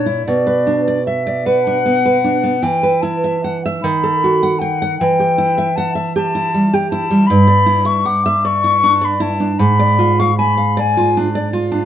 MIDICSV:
0, 0, Header, 1, 3, 480
1, 0, Start_track
1, 0, Tempo, 791557
1, 159, Time_signature, 6, 3, 24, 8
1, 2553, Tempo, 768246
1, 5913, Tempo, 781250
1, 7304, End_track
2, 0, Start_track
2, 0, Title_t, "Flute"
2, 0, Program_c, 0, 73
2, 0, Note_on_c, 0, 73, 48
2, 152, Note_off_c, 0, 73, 0
2, 156, Note_on_c, 0, 74, 48
2, 632, Note_off_c, 0, 74, 0
2, 640, Note_on_c, 0, 76, 51
2, 881, Note_on_c, 0, 78, 59
2, 890, Note_off_c, 0, 76, 0
2, 1590, Note_on_c, 0, 79, 57
2, 1599, Note_off_c, 0, 78, 0
2, 1828, Note_on_c, 0, 81, 55
2, 1837, Note_off_c, 0, 79, 0
2, 2163, Note_off_c, 0, 81, 0
2, 2315, Note_on_c, 0, 83, 62
2, 2788, Note_on_c, 0, 78, 58
2, 2798, Note_off_c, 0, 83, 0
2, 3030, Note_off_c, 0, 78, 0
2, 3033, Note_on_c, 0, 79, 67
2, 3518, Note_on_c, 0, 81, 65
2, 3528, Note_off_c, 0, 79, 0
2, 3764, Note_off_c, 0, 81, 0
2, 3769, Note_on_c, 0, 81, 73
2, 4131, Note_on_c, 0, 79, 53
2, 4140, Note_off_c, 0, 81, 0
2, 4231, Note_off_c, 0, 79, 0
2, 4234, Note_on_c, 0, 81, 67
2, 4460, Note_on_c, 0, 83, 73
2, 4469, Note_off_c, 0, 81, 0
2, 4831, Note_on_c, 0, 85, 62
2, 4840, Note_off_c, 0, 83, 0
2, 4954, Note_on_c, 0, 86, 63
2, 4963, Note_off_c, 0, 85, 0
2, 5202, Note_on_c, 0, 85, 65
2, 5211, Note_off_c, 0, 86, 0
2, 5573, Note_on_c, 0, 83, 58
2, 5582, Note_off_c, 0, 85, 0
2, 5678, Note_on_c, 0, 81, 64
2, 5688, Note_off_c, 0, 83, 0
2, 5911, Note_on_c, 0, 83, 65
2, 5920, Note_off_c, 0, 81, 0
2, 6282, Note_on_c, 0, 85, 61
2, 6291, Note_off_c, 0, 83, 0
2, 6389, Note_off_c, 0, 85, 0
2, 6393, Note_on_c, 0, 83, 65
2, 6654, Note_on_c, 0, 80, 58
2, 6663, Note_off_c, 0, 83, 0
2, 6888, Note_off_c, 0, 80, 0
2, 7304, End_track
3, 0, Start_track
3, 0, Title_t, "Nylon-string guitar"
3, 0, Program_c, 1, 24
3, 0, Note_on_c, 1, 46, 41
3, 37, Note_on_c, 1, 64, 33
3, 136, Note_off_c, 1, 46, 0
3, 161, Note_off_c, 1, 64, 0
3, 167, Note_on_c, 1, 47, 43
3, 283, Note_on_c, 1, 71, 35
3, 404, Note_on_c, 1, 62, 36
3, 477, Note_off_c, 1, 71, 0
3, 531, Note_on_c, 1, 74, 36
3, 596, Note_off_c, 1, 62, 0
3, 647, Note_off_c, 1, 74, 0
3, 649, Note_on_c, 1, 76, 30
3, 765, Note_off_c, 1, 76, 0
3, 768, Note_on_c, 1, 74, 36
3, 887, Note_on_c, 1, 71, 38
3, 958, Note_off_c, 1, 74, 0
3, 1011, Note_on_c, 1, 62, 36
3, 1077, Note_off_c, 1, 71, 0
3, 1124, Note_on_c, 1, 59, 34
3, 1198, Note_off_c, 1, 62, 0
3, 1246, Note_on_c, 1, 71, 36
3, 1312, Note_off_c, 1, 59, 0
3, 1360, Note_on_c, 1, 62, 39
3, 1430, Note_off_c, 1, 71, 0
3, 1477, Note_on_c, 1, 59, 37
3, 1546, Note_off_c, 1, 62, 0
3, 1571, Note_off_c, 1, 47, 0
3, 1592, Note_on_c, 1, 52, 47
3, 1593, Note_off_c, 1, 59, 0
3, 1717, Note_on_c, 1, 71, 34
3, 1835, Note_on_c, 1, 64, 38
3, 1911, Note_off_c, 1, 71, 0
3, 1964, Note_on_c, 1, 76, 39
3, 2032, Note_off_c, 1, 64, 0
3, 2085, Note_off_c, 1, 76, 0
3, 2087, Note_on_c, 1, 78, 34
3, 2204, Note_off_c, 1, 78, 0
3, 2217, Note_on_c, 1, 76, 41
3, 2297, Note_off_c, 1, 52, 0
3, 2327, Note_off_c, 1, 76, 0
3, 2327, Note_on_c, 1, 51, 51
3, 2447, Note_on_c, 1, 69, 39
3, 2570, Note_on_c, 1, 66, 39
3, 2633, Note_off_c, 1, 69, 0
3, 2689, Note_on_c, 1, 78, 42
3, 2757, Note_off_c, 1, 66, 0
3, 2803, Note_off_c, 1, 78, 0
3, 2805, Note_on_c, 1, 79, 39
3, 2923, Note_off_c, 1, 79, 0
3, 2933, Note_on_c, 1, 78, 43
3, 3023, Note_off_c, 1, 51, 0
3, 3048, Note_off_c, 1, 78, 0
3, 3052, Note_on_c, 1, 52, 51
3, 3168, Note_on_c, 1, 67, 38
3, 3284, Note_on_c, 1, 64, 44
3, 3359, Note_off_c, 1, 67, 0
3, 3408, Note_on_c, 1, 76, 44
3, 3477, Note_off_c, 1, 64, 0
3, 3531, Note_on_c, 1, 78, 37
3, 3599, Note_off_c, 1, 76, 0
3, 3639, Note_off_c, 1, 78, 0
3, 3641, Note_on_c, 1, 76, 43
3, 3770, Note_on_c, 1, 67, 47
3, 3838, Note_off_c, 1, 76, 0
3, 3889, Note_on_c, 1, 64, 39
3, 3962, Note_off_c, 1, 67, 0
3, 4010, Note_on_c, 1, 55, 42
3, 4081, Note_off_c, 1, 64, 0
3, 4130, Note_on_c, 1, 67, 45
3, 4199, Note_off_c, 1, 55, 0
3, 4246, Note_on_c, 1, 64, 45
3, 4316, Note_off_c, 1, 67, 0
3, 4361, Note_on_c, 1, 55, 42
3, 4430, Note_off_c, 1, 64, 0
3, 4456, Note_off_c, 1, 52, 0
3, 4476, Note_off_c, 1, 55, 0
3, 4483, Note_on_c, 1, 43, 56
3, 4593, Note_on_c, 1, 74, 41
3, 4710, Note_on_c, 1, 64, 44
3, 4783, Note_off_c, 1, 74, 0
3, 4827, Note_on_c, 1, 76, 46
3, 4904, Note_off_c, 1, 64, 0
3, 4954, Note_on_c, 1, 78, 36
3, 5026, Note_off_c, 1, 76, 0
3, 5077, Note_off_c, 1, 78, 0
3, 5082, Note_on_c, 1, 76, 45
3, 5200, Note_on_c, 1, 74, 46
3, 5275, Note_off_c, 1, 76, 0
3, 5321, Note_on_c, 1, 64, 45
3, 5392, Note_off_c, 1, 74, 0
3, 5444, Note_on_c, 1, 62, 37
3, 5510, Note_off_c, 1, 64, 0
3, 5555, Note_on_c, 1, 74, 41
3, 5630, Note_off_c, 1, 62, 0
3, 5671, Note_on_c, 1, 64, 45
3, 5744, Note_off_c, 1, 74, 0
3, 5796, Note_on_c, 1, 62, 39
3, 5864, Note_off_c, 1, 64, 0
3, 5893, Note_off_c, 1, 43, 0
3, 5915, Note_off_c, 1, 62, 0
3, 5916, Note_on_c, 1, 44, 51
3, 6039, Note_on_c, 1, 74, 40
3, 6158, Note_on_c, 1, 65, 45
3, 6232, Note_off_c, 1, 74, 0
3, 6287, Note_on_c, 1, 77, 42
3, 6353, Note_off_c, 1, 65, 0
3, 6402, Note_off_c, 1, 77, 0
3, 6405, Note_on_c, 1, 80, 34
3, 6516, Note_off_c, 1, 80, 0
3, 6518, Note_on_c, 1, 77, 42
3, 6639, Note_on_c, 1, 74, 47
3, 6714, Note_off_c, 1, 77, 0
3, 6763, Note_on_c, 1, 65, 38
3, 6833, Note_off_c, 1, 74, 0
3, 6886, Note_on_c, 1, 62, 36
3, 6953, Note_off_c, 1, 65, 0
3, 6997, Note_on_c, 1, 74, 40
3, 7072, Note_off_c, 1, 62, 0
3, 7107, Note_on_c, 1, 65, 44
3, 7186, Note_off_c, 1, 74, 0
3, 7220, Note_on_c, 1, 62, 38
3, 7301, Note_off_c, 1, 65, 0
3, 7304, Note_off_c, 1, 44, 0
3, 7304, Note_off_c, 1, 62, 0
3, 7304, End_track
0, 0, End_of_file